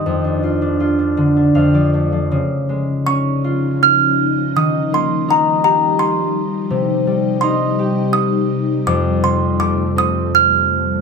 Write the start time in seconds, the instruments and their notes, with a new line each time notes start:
Already playing: harp G2 D#3 G3 B3 D#4, music box C6
0.06 harp F2
0.24 harp D4
0.43 harp F4
0.62 harp D4
0.80 harp F4
0.99 harp D4
1.17 harp D3
1.36 harp D4
1.55 harp F2 F5
1.74 harp F3 D5
1.94 harp A3
2.12 harp F3
2.31 harp C#3, ambient pad F3 C#4 D#4
2.69 harp G#3
3.06 harp C#4, music box C#6
3.44 harp F4
3.83 music box F6
4.55 harp D#3, ambient pad F3 G3, music box D#6
4.92 harp A#3, music box C6
5.28 harp D#4, music box A#5
5.64 harp G4, music box A#5
5.99 music box C6
6.70 harp C3, ambient pad C3 D#4
7.07 harp G3
7.41 harp D#4, music box C6
7.79 harp G4
8.13 music box D#6
8.85 harp F2, ambient pad F3 A3, music box D6
9.23 harp C3, music box C6
9.60 harp A3, music box D6
9.96 harp C4, music box D#6
10.35 music box F6